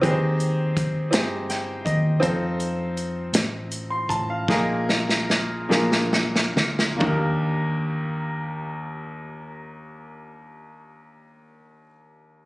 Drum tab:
HH |x-x-x-x-x-x-|x-x-x-x-x-x-|------------|------------|
SD |------o-o---|------o-----|o-ooo-oooooo|------------|
FT |------------|------------|------------|o-----------|
BD |o---o-----o-|o---------o-|o-----------|o-----------|

HH |------------|
SD |------------|
FT |------------|
BD |------------|